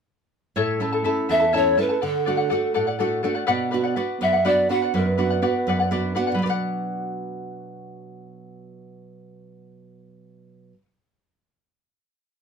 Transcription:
0.56 nylon-string guitar A2, charango E4 A4 C#5 E5 A5
0.80 nylon-string guitar A3 C#4 E4, charango E4 A4 E5 A5
0.92 charango E4 A4 A5
1.04 nylon-string guitar A3 C#4 E4, charango E4 A4 E5 A5
1.29 nylon-string guitar E2, charango E4 A4 E5 A5, pan flute E5
1.40 charango E4 A4 A5
1.53 nylon-string guitar A3 C#4 E4, charango E4 A4 C#5 E5 A5, pan flute C#5
1.77 nylon-string guitar A3 C#4 E4, charango E4 A4 E5 A5, pan flute B4
1.89 charango E4 A4 A5
2.01 nylon-string guitar D3, charango A4 D5 F#5
2.05 pan flute A4
2.25 nylon-string guitar A3 D4 F#4, charango A4 D5 F#5
2.37 charango D5 F#5
2.50 nylon-string guitar A3 D4 F#4, charango A4 D5 F#5
2.74 nylon-string guitar A2, charango A4 D5 F#5
2.87 charango D5 F#5
2.99 nylon-string guitar A3 D4 F#4, charango A4 D5 F#5
3.23 nylon-string guitar A3 D4 F#4, charango A4 D5 F#5
3.35 charango D5 F#5
3.47 nylon-string guitar B2, charango B4 D5 F#5
3.71 nylon-string guitar B3 D4 F#4, charango B4 D5 F#5
3.84 charango D5 F#5
3.96 nylon-string guitar B3 D4 F#4, charango B4 D5 F#5
4.21 nylon-string guitar F#2, charango B4 D5 F#5, pan flute E5
4.33 charango D5 F#5
4.45 nylon-string guitar B3 D4 F#4, charango B4 D5 F#5, pan flute D5
4.69 nylon-string guitar B3 D4 F#4, charango B4 D5 F#5, pan flute F#5
4.82 charango D5 F#5
4.94 nylon-string guitar F#2, charango B4 D5 F#5, pan flute B4
5.17 nylon-string guitar B3 D4 F#4, charango B4 D5 F#5
5.30 charango D5 F#5
5.42 nylon-string guitar B3 D4 F#4, charango B4 D5 F#5
5.67 nylon-string guitar F#2, charango B4 D5 F#5
5.79 charango D5 F#5
5.91 nylon-string guitar B3 D4 F#4 D5, charango B4 D5 F#5
6.15 nylon-string guitar B3 D4 F#4 F#5, charango B4 D5 F#5
6.27 charango D5 F#5
6.32 nylon-string guitar B2 F#3, charango B4
6.39 nylon-string guitar D4 F#4
6.43 nylon-string guitar B4, charango D5
6.49 nylon-string guitar F#5, charango F#5

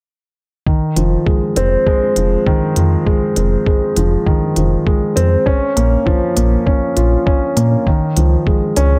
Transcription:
0.67 upright piano D#3, kick
0.96 analog synth bass F1, upright piano F3, closed hi-hat
1.26 upright piano G#3, kick
1.56 analog synth bass F1, upright piano C4, closed hi-hat
1.87 upright piano G#3, kick
2.16 analog synth bass F1, upright piano F3, closed hi-hat
2.47 upright piano D#3, kick
2.76 analog synth bass F2, upright piano F3, closed hi-hat
3.07 upright piano G#3, kick
3.36 analog synth bass F1, upright piano C4, closed hi-hat
3.66 upright piano G#3, kick
3.96 analog synth bass F1, upright piano F3, closed hi-hat
4.26 upright piano D#3, kick
4.56 analog synth bass F1, upright piano F3, closed hi-hat
4.87 upright piano G#3, kick
5.16 analog synth bass F2, upright piano C4, closed hi-hat
5.46 upright piano C#4, kick
5.76 analog synth bass A#1, upright piano A#3, closed hi-hat
6.06 upright piano F3, kick
6.36 analog synth bass A#1, upright piano A#3, closed hi-hat
6.66 upright piano C#4, kick
6.97 analog synth bass A#1, upright piano F4, closed hi-hat
7.26 upright piano C#4, kick
7.56 analog synth bass A#2, upright piano A#3, closed hi-hat
7.87 upright piano D#3, kick
8.17 analog synth bass C#2, upright piano F3, closed hi-hat
8.47 upright piano G#3, kick
8.76 analog synth bass C#2, upright piano C#4, closed hi-hat

